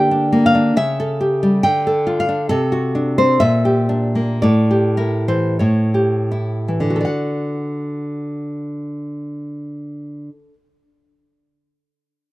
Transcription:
0.00 0.72 D3 medium
0.00 0.31 A#3 medium
0.00 0.10 D4 medium
0.00 0.75 G4 medium
0.00 0.43 G5 medium
0.11 0.54 D4 medium
0.32 0.75 A#3 medium
0.46 0.73 F5 medium
0.55 0.75 D4 medium
0.77 1.60 C#3 medium
0.77 1.59 E5 medium
1.00 1.63 A4 medium
1.21 1.63 G4 medium
1.43 1.63 G3 medium
1.63 2.48 D3 medium
1.63 2.18 G5 medium
1.87 2.48 A4 medium
2.07 2.28 F4 medium
2.20 2.48 F5 medium
2.29 2.50 D4 medium
2.49 3.38 C3 medium
2.49 3.14 A4 medium
2.72 3.40 F#4 medium
2.95 3.40 D4 medium
3.18 3.41 C4 soft
3.18 3.40 C5 medium
3.40 4.40 A#2 medium
3.40 4.39 E5 loud
3.65 4.43 G4 medium
3.89 4.42 D4 soft
4.15 4.42 A#3 soft
4.42 5.58 A2 medium
4.42 4.97 D5 medium
4.71 5.61 G4 medium
4.97 5.60 E4 soft
4.97 5.28 A#4 medium
5.28 5.60 E3 soft
5.28 5.59 C5 medium
5.59 7.03 A2 medium
5.59 6.95 C#5 medium
5.94 6.90 G4 soft
6.32 7.04 E4 soft
6.68 7.07 E3 soft
6.80 10.29 D3 medium
6.90 10.39 F#4 soft
6.96 7.00 A4 soft
7.01 10.49 D5 soft
7.05 10.53 F#5 medium

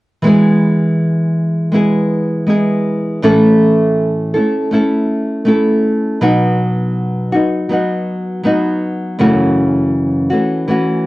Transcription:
0.22 3.23 E3 medium
0.22 1.70 G#3 medium
0.22 1.72 B3 medium
0.27 1.74 E4 medium
0.27 1.74 G#4 medium
1.72 2.45 G#3 medium
1.72 2.46 B3 soft
1.72 2.48 E4 soft
1.72 2.49 G#4 medium
2.47 3.22 G#3 soft
2.47 3.22 B3 medium
2.47 3.24 E4 medium
2.47 3.23 G#4 medium
3.22 4.34 A2 medium
3.22 4.35 E3 medium
3.22 4.35 A3 medium
3.22 4.35 C#4 medium
3.22 4.34 E4 medium
3.22 4.33 A4 medium
4.34 4.70 A3 soft
4.34 4.71 C#4 soft
4.34 4.72 E4 soft
4.34 4.71 A4 soft
4.71 5.44 A3 soft
4.71 5.45 C#4 medium
4.71 5.46 E4 medium
4.71 5.47 A4 medium
5.45 6.20 A3 medium
5.45 6.21 C#4 medium
5.45 6.21 E4 medium
5.45 6.22 A4 medium
6.21 7.33 B2 medium
6.21 7.69 F#3 medium
6.21 7.33 B3 medium
6.21 7.33 D#4 medium
6.21 7.32 F#4 medium
7.32 7.69 B3 soft
7.32 7.70 D#4 soft
7.32 7.70 F#4 soft
7.69 8.43 F#3 soft
7.69 8.43 B3 soft
7.69 8.44 D#4 medium
7.69 8.46 F#4 medium
8.43 9.19 F#3 medium
8.43 9.19 B3 medium
8.43 9.20 D#4 medium
8.43 9.20 F#4 medium
9.19 10.31 F#2 medium
9.19 10.31 C#3 medium
9.19 10.33 E3 medium
9.19 10.31 A3 medium
9.19 10.30 C#4 medium
9.19 10.29 F#4 medium
10.30 10.66 E3 soft
10.30 10.67 A3 soft
10.30 10.68 C#4 soft
10.30 10.67 F#4 soft
10.67 11.06 E3 medium
10.67 11.06 A3 soft
10.67 11.06 C#4 medium
10.67 11.06 F#4 soft

